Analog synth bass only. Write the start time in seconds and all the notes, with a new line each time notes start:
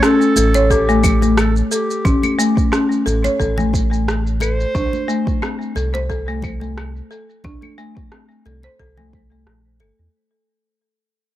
0.37 A1
2.05 A1
3.06 A1
3.40 A1
4.75 C2
5.76 C2
7.45 C2
8.46 C2
8.80 C2
9.47 A#1
9.81 G1
9.99 E2